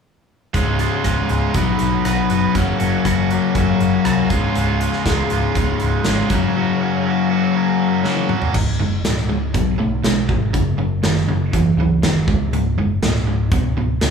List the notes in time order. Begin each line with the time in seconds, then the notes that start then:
0.53 C#1 C#2 G#2 C#3 G#3 F4, kick, closed hi-hat
0.79 C#3 G#3 F4, closed hi-hat
1.04 C#1 G#2 C#3 G#3 F4, kick, cross-stick, closed hi-hat
1.29 C#1 C#3 G#3 F4, closed hi-hat
1.54 B1 B2 F#3 B3 D#4 F#4 B4, kick, closed hi-hat
1.79 B1, closed hi-hat
2.05 B1 B3 D#4 F#4 B4, cross-stick, closed hi-hat
2.30 F#1 B3 D#4 F#4 B4, closed hi-hat
2.55 F#1 F#2 C#3 F#3 A#3 C#4 F#4, kick, closed hi-hat
2.79 F#1 F#3 A#3 C#4 F#4, closed hi-hat
3.05 F#1 F#3 A#3 C#4 F#4, kick, cross-stick, closed hi-hat
3.31 F#3 A#3 C#4 F#4, closed hi-hat
3.54 F#1 F#2 C#3 F#3 A#3 C#4 F#4, kick, closed hi-hat
3.80 F#1, closed hi-hat
4.04 C2 F#3 A#3 C#4 F#4, cross-stick, closed hi-hat
4.30 C#1 C#2 G#2 C#3 G#3 F4, kick, closed hi-hat
4.55 C#1 C#2 G#2 C#3 G#3 F4, closed hi-hat
4.81 C#3 G#3 F4, closed hi-hat
4.93 snare
5.06 C#1 G#2 C#3 G#3 F4, kick, snare, closed hi-hat
5.30 C#1 C#3 G#3 F4, closed hi-hat
5.55 C#1 C#2 G#2 C#3 G#3 F4, kick, closed hi-hat
5.80 C#1, closed hi-hat
6.04 G#1 C#2 G#2 C#3 G#3 F4, snare, closed hi-hat
6.30 F#1 F#2 C#3 F#3 A#3 C#4 F#4, kick, closed hi-hat
6.56 F#2 C#3 F#3 A#3 C#4 F#4
6.81 F#3 A#3 C#4 F#4
7.05 F#3 A#3 C#4 F#4
7.30 F#3 A#3 C#4 F#4
7.55 F#2 C#3 F#3 A#3 C#4 F#4
8.03 F#2 C#3 F#3 A#3 C#4 F#4, snare
8.17 high tom
8.29 F#3 A#3 C#4 F#4, mid tom
8.42 floor tom
8.53 C#1 C#2 G#2, kick, crash
8.80 F#1 C#2 G#2
9.05 C#1 C#2 A#2, snare, closed hi-hat
9.18 snare
9.29 C#2 G#2
9.54 B1 B2 F#3, kick, closed hi-hat
9.78 B1 B2 A3
10.03 B1 B2 G#3, snare, closed hi-hat
10.29 G#1 B2 F#3, kick
10.53 F#1 F#2 C#3, kick, closed hi-hat
10.78 F#2 C#3
11.03 F#1 F#2 D#3, snare, closed hi-hat
11.16 snare
11.28 F#1 F#2 C#3
11.53 F#1 F#2 E3, kick, closed hi-hat
11.77 C#2 F#2 E3
12.02 F#1 F#2 D#3, snare, closed hi-hat
12.28 C#1 C#2 G#2, kick
12.52 C#1 C#2 G#2, closed hi-hat
12.77 F#1 C#2 G#2
13.02 C#1 C#2 A#2, snare, closed hi-hat
13.15 snare
13.27 C#2 G#2
13.52 C#2 B2, kick, closed hi-hat
13.76 C#1 C#2 B2
14.01 C#2 A#2, snare, closed hi-hat